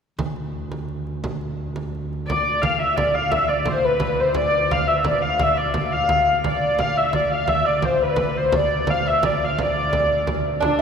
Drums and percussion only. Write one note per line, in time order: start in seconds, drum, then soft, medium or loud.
0.19 frame drum medium
0.36 frame drum soft
0.72 frame drum medium
0.89 frame drum soft
1.07 frame drum soft
1.24 frame drum medium
1.41 frame drum soft
1.76 frame drum medium
1.95 frame drum soft
2.13 frame drum soft
2.30 frame drum medium
2.47 frame drum soft
2.63 frame drum medium
2.81 frame drum soft
2.98 frame drum medium
3.32 frame drum medium
3.49 frame drum soft
3.65 frame drum medium
3.83 frame drum soft
4.00 frame drum medium
4.34 frame drum medium
4.53 frame drum soft
4.71 frame drum medium
4.88 frame drum soft
5.04 frame drum medium
5.39 frame drum medium
5.57 frame drum soft
5.74 frame drum medium
6.09 frame drum medium
6.44 frame drum medium
6.62 frame drum soft
6.79 frame drum medium
6.96 frame drum soft
7.13 frame drum medium
7.48 frame drum medium
7.66 frame drum soft
7.82 frame drum medium
8.00 frame drum soft
8.16 frame drum medium
8.52 frame drum medium
8.70 frame drum soft
8.87 frame drum medium
9.06 frame drum soft
9.23 frame drum medium
9.58 frame drum medium
9.93 frame drum medium
10.11 frame drum soft
10.27 frame drum medium
10.46 frame drum soft
10.62 frame drum medium